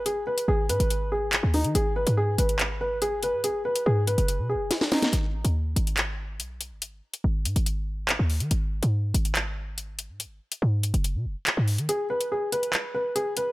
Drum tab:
HH |x--x--xxx---x-ox|x--x--xxx---x-x-|x--x--xxx---x-ox|x--x--xxx---x-x-|
CP |------------x---|--------x-------|----------------|--------x-------|
SD |----------------|----------------|------------oooo|----------------|

HH |x--x--xxx---x-ox|x--x--xxx---x-x-|x--x--xxx---x-ox|x--x--xxx---x-x-|
CP |------------x---|--------x-------|------------x---|--------x-------|
SD |----------------|----------------|----------------|----------------|